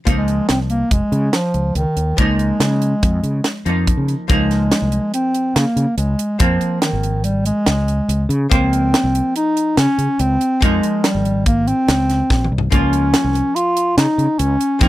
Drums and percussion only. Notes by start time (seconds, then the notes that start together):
0.07 kick, closed hi-hat
0.28 closed hi-hat
0.49 snare, closed hi-hat
0.70 closed hi-hat
0.91 kick, closed hi-hat
1.12 closed hi-hat
1.33 snare, closed hi-hat
1.54 closed hi-hat
1.75 closed hi-hat
1.97 closed hi-hat
2.18 kick, closed hi-hat
2.39 closed hi-hat
2.60 snare, closed hi-hat
2.82 closed hi-hat
3.03 kick, closed hi-hat
3.24 closed hi-hat
3.44 snare, closed hi-hat
3.66 closed hi-hat
3.87 kick, closed hi-hat
4.08 closed hi-hat
4.29 kick, closed hi-hat
4.51 snare, closed hi-hat
4.71 snare, closed hi-hat
4.92 closed hi-hat
5.14 closed hi-hat
5.35 closed hi-hat
5.56 snare, closed hi-hat
5.77 closed hi-hat
5.98 closed hi-hat
6.19 closed hi-hat
6.40 kick, closed hi-hat
6.61 closed hi-hat
6.82 snare, closed hi-hat
7.03 closed hi-hat
7.24 closed hi-hat
7.45 closed hi-hat
7.66 snare, closed hi-hat
7.88 closed hi-hat
8.09 closed hi-hat
8.30 closed hi-hat
8.52 kick, closed hi-hat
8.73 closed hi-hat
8.94 snare, closed hi-hat
9.15 closed hi-hat
9.36 closed hi-hat
9.57 closed hi-hat
9.77 snare, closed hi-hat
9.99 closed hi-hat
10.19 closed hi-hat
10.41 closed hi-hat
10.62 kick, closed hi-hat
10.83 closed hi-hat
11.04 snare, closed hi-hat
11.25 closed hi-hat
11.46 kick, closed hi-hat
11.67 closed hi-hat
11.88 snare, closed hi-hat
12.10 snare, closed hi-hat
12.30 kick, snare
12.44 mid tom
12.58 floor tom
12.72 kick, closed hi-hat
12.93 closed hi-hat
13.14 snare, closed hi-hat
13.35 closed hi-hat
13.56 closed hi-hat
13.77 closed hi-hat
13.98 snare, closed hi-hat
14.19 closed hi-hat
14.39 closed hi-hat
14.61 closed hi-hat
14.81 kick, closed hi-hat